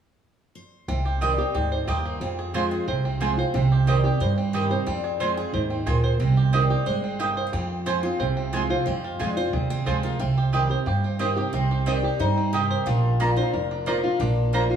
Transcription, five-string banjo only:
0.88 1.21 C4 medium
1.05 1.37 G4 medium
1.22 2.05 C4 medium
1.39 1.54 G4 medium
1.55 1.87 G4 medium
1.72 2.54 C5 medium
1.88 2.21 G4 medium
2.05 2.21 C4 medium
2.22 3.05 C4 medium
2.39 2.70 G#4 medium
2.55 2.88 C5 medium
2.72 3.18 G#4 medium
2.88 3.38 C5 medium
3.05 3.54 C4 medium
3.22 3.55 G#4 medium
3.39 3.88 C5 medium
3.55 4.37 C4 medium
3.72 4.04 G4 medium
3.88 4.21 C5 medium
4.05 4.51 G4 medium
4.21 4.70 C5 medium
4.38 4.87 C4 medium
4.54 4.87 G4 medium
4.71 5.20 C5 medium
4.87 5.70 C4 medium
5.04 5.36 G#4 medium
5.20 5.53 C5 medium
5.37 5.84 G#4 medium
5.54 6.03 C5 medium
5.70 6.19 C4 medium
5.87 6.20 G#4 medium
6.04 6.53 C5 medium
6.20 7.03 C4 medium
6.37 6.69 G4 medium
6.53 6.86 C5 medium
6.70 7.17 G4 medium
6.87 7.37 C5 medium
7.04 7.53 C4 medium
7.20 7.53 G4 medium
7.37 7.86 C5 medium
7.53 8.36 C4 medium
7.87 8.19 C5 medium
8.03 8.50 G#4 medium
8.20 8.70 C5 medium
8.37 8.86 C4 medium
8.53 9.00 G#4 medium
8.70 9.36 C5 medium
8.87 9.70 C4 medium
9.04 9.50 F4 medium
9.20 9.52 G#4 medium
9.37 9.86 C5 medium
9.53 10.00 G#4 medium
9.70 10.20 C4 medium
9.86 10.70 C5 medium
10.04 10.20 F4 medium
10.20 11.04 C4 medium
10.38 10.54 G4 medium
10.54 10.86 G4 medium
10.71 11.17 C5 medium
10.87 11.34 G4 medium
11.04 11.50 C4 medium
11.21 11.67 C5 medium
11.37 11.70 G4 medium
11.54 12.00 C4 medium
11.71 12.03 G4 medium
11.87 12.19 C5 medium
12.04 12.50 G4 medium
12.20 12.67 C5 medium
12.38 12.84 C4 medium
12.54 12.87 G4 medium
12.71 12.87 C5 medium
12.87 13.40 D4 medium
13.20 13.54 A#4 medium
13.37 13.84 C5 medium
13.54 14.57 A#4 medium
13.71 14.20 D4 medium
13.87 14.34 C5 medium
14.04 14.76 F4 medium
14.21 14.76 D4 medium
14.54 14.76 C5 medium
14.71 14.76 A#4 medium

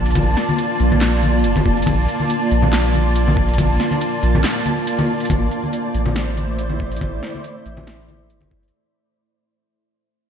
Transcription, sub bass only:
0.00 0.14 A#1 loud
0.16 0.35 A#1 loud
0.80 1.45 A#1 loud
1.44 1.86 F1 medium
1.87 2.07 A#1 loud
2.51 3.57 A#1 loud
3.58 3.78 A#1 loud
4.23 4.44 A#1 loud
5.30 5.50 A1 loud
5.94 7.00 A1 medium
7.01 7.21 A1 loud
7.66 8.31 A1 medium
8.30 8.71 G1 medium

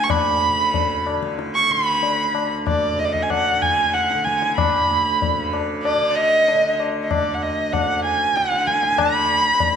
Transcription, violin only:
0.04 0.12 C#6 medium
0.10 1.07 B5 medium
1.55 1.72 C#6 medium
1.71 2.51 B5 medium
2.68 3.01 D5 medium
2.99 3.06 D#5 medium
3.04 3.14 D5 medium
3.13 3.24 D#5 medium
3.22 3.32 G#5 medium
3.30 3.64 F#5 medium
3.62 3.95 G#5 medium
3.94 4.26 F#5 medium
4.24 4.56 G#5 medium
4.56 5.48 B5 medium
5.83 6.17 D5 medium
6.16 6.79 D#5 loud
7.03 7.13 D#5 medium
7.11 7.35 D5 medium
7.34 7.43 F#5 soft
7.42 7.74 D#5 medium
7.72 8.04 F#5 medium
8.05 8.37 G#5 medium
8.36 8.69 F#5 medium
8.67 8.99 G#5 medium
8.98 9.76 B5 medium

